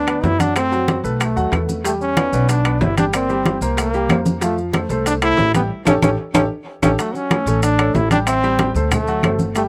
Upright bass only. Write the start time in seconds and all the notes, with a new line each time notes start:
Already playing: D2
0.23 F#2
1.04 B1
1.36 D#2
1.52 E2
2.32 B1
2.81 G1
3.61 C2
4.09 F2
4.89 C2
5.38 A1
5.86 A1
6.02 A1
6.34 A1
6.82 A1
7.46 A1
7.94 A1
8.75 D2
9.23 G1